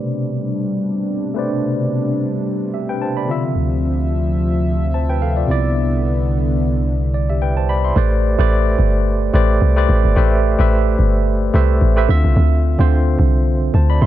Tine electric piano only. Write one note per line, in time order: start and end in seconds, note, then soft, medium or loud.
0.00 1.31 A3 medium
0.00 1.31 G4 medium
0.00 1.32 B4 medium
0.00 1.32 C5 medium
0.00 1.33 D5 medium
1.34 3.24 A3 medium
1.34 2.43 G4 medium
1.34 2.44 B4 medium
1.34 2.44 C5 medium
1.38 2.45 D5 medium
2.74 2.88 G4 medium
2.74 2.88 E5 medium
2.89 3.01 B4 medium
2.89 3.00 G5 medium
3.02 3.16 C5 medium
3.02 3.15 A5 medium
3.17 3.43 D5 medium
3.17 3.42 B5 medium
3.27 5.44 D3 medium
3.27 5.44 C4 medium
3.27 4.91 F4 medium
3.31 4.91 E5 medium
4.94 5.08 C5 medium
4.94 5.08 A5 medium
5.09 5.21 B4 medium
5.09 5.21 G5 medium
5.22 5.36 A4 medium
5.22 5.36 F5 medium
5.37 5.63 F4 medium
5.37 5.50 D5 medium
5.47 7.64 C3 medium
5.47 7.65 B3 medium
5.47 7.65 E4 medium
5.51 7.12 D5 medium
7.14 7.28 D5 medium
7.30 7.41 G4 medium
7.30 7.41 E5 medium
7.42 7.56 B4 medium
7.42 7.56 G5 medium
7.57 7.69 C5 medium
7.57 7.68 A5 medium
7.69 7.84 D5 medium
7.69 7.83 B5 medium
7.84 8.11 E5 medium
7.84 8.10 C6 medium
7.96 8.29 A3 medium
7.96 8.30 G4 medium
7.96 8.30 B4 medium
7.96 8.30 C5 medium
7.96 8.30 D5 medium
8.38 9.15 A3 medium
8.38 9.15 G4 medium
8.38 9.16 B4 medium
8.38 9.16 C5 medium
8.38 9.16 D5 loud
9.33 9.67 A3 medium
9.33 9.67 G4 medium
9.33 9.68 B4 medium
9.33 9.68 C5 medium
9.33 9.68 D5 loud
9.76 10.09 A3 medium
9.76 10.09 G4 medium
9.76 10.09 B4 medium
9.76 10.09 C5 medium
9.76 10.10 D5 loud
10.16 10.50 A3 medium
10.16 10.50 G4 medium
10.16 10.50 B4 medium
10.16 10.50 C5 medium
10.16 10.51 E5 loud
10.58 11.35 A3 medium
10.58 11.35 G4 medium
10.58 11.36 B4 medium
10.58 11.36 C5 medium
10.58 11.36 E5 loud
11.53 11.87 A3 medium
11.53 11.87 G4 medium
11.53 11.88 B4 medium
11.53 11.88 C5 medium
11.53 11.88 E5 loud
11.96 12.09 A3 medium
11.96 12.09 G4 medium
11.96 12.09 B4 medium
11.96 12.09 C5 medium
11.96 12.09 E5 loud
12.08 12.64 D3 loud
12.08 12.64 C4 medium
12.08 12.64 F4 medium
12.08 12.65 E5 loud
12.79 13.55 D3 medium
12.79 13.56 C4 medium
12.79 13.56 F4 medium
12.79 13.56 C5 loud
13.75 13.89 C5 medium
13.75 13.89 A5 medium
13.90 14.02 D5 medium
13.90 14.01 B5 medium
14.02 14.06 E5 medium
14.02 14.06 C6 medium